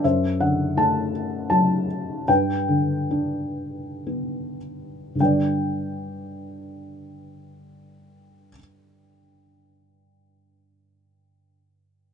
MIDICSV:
0, 0, Header, 1, 2, 480
1, 0, Start_track
1, 0, Key_signature, 1, "major"
1, 0, Tempo, 734394
1, 25, Time_signature, 3, 2, 24, 8
1, 984, Tempo, 775194
1, 1464, Tempo, 829876
1, 1944, Tempo, 949367
1, 2424, Tempo, 1134216
1, 2904, Tempo, 1183432
1, 3864, Tempo, 1142857
1, 4824, Tempo, 1176471
1, 5759, End_track
2, 0, Start_track
2, 0, Title_t, "Felt piano"
2, 0, Program_c, 0, 0
2, 0, Control_c, 0, 64, 127
2, 27, Note_on_c, 0, 42, 41
2, 27, Note_on_c, 0, 76, 56
2, 33, Note_on_c, 0, 72, 40
2, 34, Control_c, 0, 64, 0
2, 144, Control_c, 0, 64, 127
2, 263, Note_on_c, 0, 50, 34
2, 264, Note_on_c, 0, 78, 54
2, 272, Note_off_c, 0, 76, 0
2, 502, Note_on_c, 0, 57, 36
2, 507, Note_on_c, 0, 81, 66
2, 509, Note_off_c, 0, 78, 0
2, 719, Note_off_c, 0, 72, 0
2, 969, Note_off_c, 0, 81, 0
2, 979, Note_on_c, 0, 81, 65
2, 984, Note_on_c, 0, 54, 42
2, 1195, Note_off_c, 0, 50, 0
2, 1439, Note_off_c, 0, 57, 0
2, 1441, Note_off_c, 0, 42, 0
2, 1450, Note_off_c, 0, 54, 0
2, 1464, Note_on_c, 0, 79, 62
2, 1466, Note_on_c, 0, 43, 46
2, 1472, Control_c, 0, 64, 0
2, 1472, Note_on_c, 0, 71, 44
2, 1475, Note_off_c, 0, 81, 0
2, 1579, Control_c, 0, 64, 127
2, 1697, Note_on_c, 0, 50, 38
2, 1943, Note_on_c, 0, 62, 42
2, 2427, Note_on_c, 0, 59, 33
2, 2637, Note_off_c, 0, 50, 0
2, 2638, Note_off_c, 0, 79, 0
2, 2641, Note_off_c, 0, 71, 0
2, 2879, Note_off_c, 0, 43, 0
2, 2885, Note_on_c, 0, 43, 26
2, 2887, Note_off_c, 0, 62, 0
2, 2891, Note_off_c, 0, 59, 0
2, 2893, Note_on_c, 0, 50, 26
2, 2901, Note_on_c, 0, 55, 24
2, 2908, Note_on_c, 0, 79, 41
2, 2910, Control_c, 0, 64, 0
2, 2910, Note_on_c, 0, 62, 24
2, 2919, Note_on_c, 0, 71, 25
2, 2928, Note_on_c, 0, 74, 29
2, 2979, Control_c, 0, 64, 127
2, 4251, Note_off_c, 0, 43, 0
2, 4258, Note_off_c, 0, 50, 0
2, 4266, Note_off_c, 0, 55, 0
2, 4273, Note_off_c, 0, 79, 0
2, 4275, Note_off_c, 0, 62, 0
2, 4284, Note_off_c, 0, 71, 0
2, 4294, Note_off_c, 0, 74, 0
2, 5759, End_track
0, 0, End_of_file